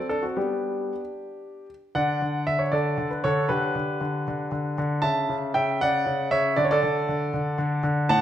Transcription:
grand piano
0.09 D4 A4
0.23 C4 F#4
0.37 G3 B3 D4 G4
1.95 D3 D5 F#5
2.22 D3
2.47 D3 E5
2.59 C#5
2.72 D3 A4 D5
2.98 D3
3.11 B4
3.24 D3 A4 C#5
3.49 D3 G4 B4
3.76 D3
4.01 D3
4.28 D3
4.52 D3
4.78 D3
5.02 C#3 E5 A5
5.29 C#3
5.54 C#3 E5 G5
5.81 C#3 D5 F#5
6.06 C#3
6.31 C#3 C#5 E5
6.56 D3 D5
6.65 C#5
6.71 A4 D5
6.83 D3
7.09 D3
7.34 D3
7.58 D3
7.83 D3
8.09 A2 F#5 A5

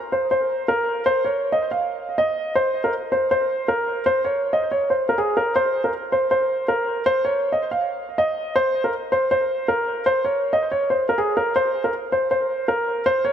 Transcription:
grand piano
0.12 C5
0.31 C5
0.68 A#4
1.06 C5
1.25 C#5
1.52 D#5
1.71 F5
2.18 D#5
2.55 C5
2.84 A#4
3.12 C5
3.31 C5
3.68 A#4
4.06 C5
4.25 C#5
4.53 D#5
4.72 C#5
4.90 C5
5.09 A#4
5.18 G#4
5.37 A#4
5.56 C5
5.84 A#4
6.12 C5
6.31 C5
6.68 A#4
7.06 C5
7.25 C#5
7.52 D#5
7.71 F5
8.18 D#5
8.56 C5
8.84 A#4
9.12 C5
9.31 C5
9.68 A#4
10.06 C5
10.25 C#5
10.53 D#5
10.72 C#5
10.90 C5
11.09 A#4
11.18 G#4
11.37 A#4
11.56 C5
11.84 A#4
12.12 C5
12.31 C5
12.68 A#4
13.06 C5
13.25 C#5

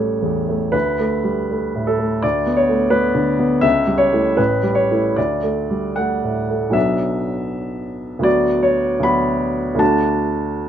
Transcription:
grand piano
Already playing: A1 G3 A3 C#5
0.22 E2
0.49 A3
0.72 D2 B4
0.99 A3
1.24 G3
1.51 A3
1.75 A2
1.87 A4
1.99 A3
2.22 D2 D5
2.46 B3
2.56 C#5
2.69 A3
2.90 B3 B4
3.15 D3
3.39 B3
3.61 C#2 E5
3.87 G3
3.98 C#5
4.13 A3 E4
4.37 A1 B4
4.63 G3
4.75 C#5
4.91 A3 E4
5.16 D2 D5
5.43 A3
5.70 G3
5.96 A3 F#5
6.24 A2
6.50 A3
6.70 B1 F#3 B3 D4 E5
8.19 D2 F#3 B3
8.23 F#4 D5
8.63 C#5
9.00 D2 F#3 B3 B5
9.04 F#4
9.75 D2 A3 D4
9.79 F#4 A5

